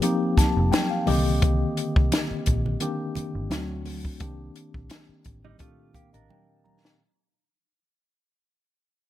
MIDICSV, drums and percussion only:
0, 0, Header, 1, 2, 480
1, 0, Start_track
1, 0, Tempo, 696864
1, 978, Time_signature, 4, 2, 24, 8
1, 6265, End_track
2, 0, Start_track
2, 0, Title_t, "Drums"
2, 14, Note_on_c, 9, 62, 37
2, 15, Note_on_c, 9, 42, 79
2, 83, Note_off_c, 9, 62, 0
2, 84, Note_off_c, 9, 42, 0
2, 258, Note_on_c, 9, 36, 83
2, 259, Note_on_c, 9, 62, 37
2, 259, Note_on_c, 9, 64, 57
2, 265, Note_on_c, 9, 42, 66
2, 273, Note_on_c, 9, 38, 30
2, 327, Note_off_c, 9, 36, 0
2, 328, Note_off_c, 9, 62, 0
2, 328, Note_off_c, 9, 64, 0
2, 334, Note_off_c, 9, 42, 0
2, 342, Note_off_c, 9, 38, 0
2, 500, Note_on_c, 9, 63, 76
2, 505, Note_on_c, 9, 42, 84
2, 509, Note_on_c, 9, 38, 114
2, 569, Note_off_c, 9, 63, 0
2, 574, Note_off_c, 9, 42, 0
2, 578, Note_off_c, 9, 38, 0
2, 737, Note_on_c, 9, 46, 75
2, 737, Note_on_c, 9, 63, 71
2, 806, Note_off_c, 9, 46, 0
2, 806, Note_off_c, 9, 63, 0
2, 979, Note_on_c, 9, 42, 89
2, 980, Note_on_c, 9, 36, 122
2, 983, Note_on_c, 9, 62, 52
2, 1047, Note_off_c, 9, 42, 0
2, 1049, Note_off_c, 9, 36, 0
2, 1052, Note_off_c, 9, 62, 0
2, 1221, Note_on_c, 9, 42, 75
2, 1289, Note_off_c, 9, 42, 0
2, 1351, Note_on_c, 9, 36, 99
2, 1420, Note_off_c, 9, 36, 0
2, 1460, Note_on_c, 9, 42, 87
2, 1461, Note_on_c, 9, 63, 70
2, 1471, Note_on_c, 9, 38, 116
2, 1529, Note_off_c, 9, 42, 0
2, 1530, Note_off_c, 9, 63, 0
2, 1540, Note_off_c, 9, 38, 0
2, 1695, Note_on_c, 9, 42, 66
2, 1703, Note_on_c, 9, 36, 80
2, 1764, Note_off_c, 9, 42, 0
2, 1772, Note_off_c, 9, 36, 0
2, 1830, Note_on_c, 9, 64, 58
2, 1899, Note_off_c, 9, 64, 0
2, 1931, Note_on_c, 9, 42, 84
2, 1935, Note_on_c, 9, 62, 39
2, 2000, Note_off_c, 9, 42, 0
2, 2004, Note_off_c, 9, 62, 0
2, 2173, Note_on_c, 9, 62, 39
2, 2173, Note_on_c, 9, 64, 60
2, 2180, Note_on_c, 9, 42, 56
2, 2242, Note_off_c, 9, 62, 0
2, 2242, Note_off_c, 9, 64, 0
2, 2248, Note_off_c, 9, 42, 0
2, 2416, Note_on_c, 9, 63, 80
2, 2419, Note_on_c, 9, 42, 89
2, 2422, Note_on_c, 9, 38, 110
2, 2485, Note_off_c, 9, 63, 0
2, 2488, Note_off_c, 9, 42, 0
2, 2491, Note_off_c, 9, 38, 0
2, 2655, Note_on_c, 9, 46, 82
2, 2656, Note_on_c, 9, 63, 65
2, 2724, Note_off_c, 9, 46, 0
2, 2724, Note_off_c, 9, 63, 0
2, 2788, Note_on_c, 9, 36, 83
2, 2857, Note_off_c, 9, 36, 0
2, 2893, Note_on_c, 9, 42, 95
2, 2897, Note_on_c, 9, 36, 116
2, 2901, Note_on_c, 9, 62, 50
2, 2962, Note_off_c, 9, 42, 0
2, 2966, Note_off_c, 9, 36, 0
2, 2970, Note_off_c, 9, 62, 0
2, 3138, Note_on_c, 9, 42, 76
2, 3207, Note_off_c, 9, 42, 0
2, 3267, Note_on_c, 9, 36, 88
2, 3336, Note_off_c, 9, 36, 0
2, 3373, Note_on_c, 9, 42, 90
2, 3380, Note_on_c, 9, 63, 71
2, 3384, Note_on_c, 9, 38, 120
2, 3442, Note_off_c, 9, 42, 0
2, 3449, Note_off_c, 9, 63, 0
2, 3452, Note_off_c, 9, 38, 0
2, 3613, Note_on_c, 9, 42, 69
2, 3621, Note_on_c, 9, 36, 82
2, 3682, Note_off_c, 9, 42, 0
2, 3690, Note_off_c, 9, 36, 0
2, 3751, Note_on_c, 9, 64, 58
2, 3820, Note_off_c, 9, 64, 0
2, 3851, Note_on_c, 9, 42, 83
2, 3859, Note_on_c, 9, 36, 97
2, 3860, Note_on_c, 9, 62, 41
2, 3919, Note_off_c, 9, 42, 0
2, 3927, Note_off_c, 9, 36, 0
2, 3929, Note_off_c, 9, 62, 0
2, 4095, Note_on_c, 9, 36, 72
2, 4095, Note_on_c, 9, 62, 44
2, 4095, Note_on_c, 9, 64, 56
2, 4101, Note_on_c, 9, 42, 60
2, 4163, Note_off_c, 9, 36, 0
2, 4164, Note_off_c, 9, 62, 0
2, 4164, Note_off_c, 9, 64, 0
2, 4170, Note_off_c, 9, 42, 0
2, 4229, Note_on_c, 9, 42, 50
2, 4298, Note_off_c, 9, 42, 0
2, 4343, Note_on_c, 9, 63, 79
2, 4412, Note_off_c, 9, 63, 0
2, 4584, Note_on_c, 9, 63, 73
2, 4653, Note_off_c, 9, 63, 0
2, 4719, Note_on_c, 9, 38, 86
2, 4788, Note_off_c, 9, 38, 0
2, 6265, End_track
0, 0, End_of_file